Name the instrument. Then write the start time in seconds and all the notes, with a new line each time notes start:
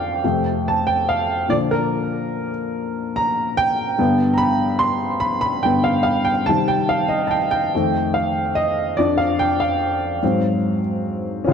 upright piano
Already playing: F2 D3 F3 D5 F5 G5
0.24 F2 C3 A3
0.68 A5
0.87 G5
1.09 F5
1.48 A#2 D3 F3 D5
1.71 A#4
3.16 A#5
3.57 G5
3.98 G2 D3 B3
4.34 A#5 B5
4.79 C6
5.20 B5
5.41 B5
5.63 G2 D3 B3 G5
5.84 F5
6.03 F5
6.25 G5
6.46 C3 D#3 G3 A5
6.68 G5
6.89 F5
7.09 D#5
7.27 G5 A5
7.51 G5
7.75 F2 D#3 A3
8.14 F5
8.55 D#5
8.97 F2 F3 D4 D5
9.18 F5
9.39 G5
9.60 F5
10.23 G#2 F#3 C4
11.44 C#2 C#3 C#4 F4
11.49 G#4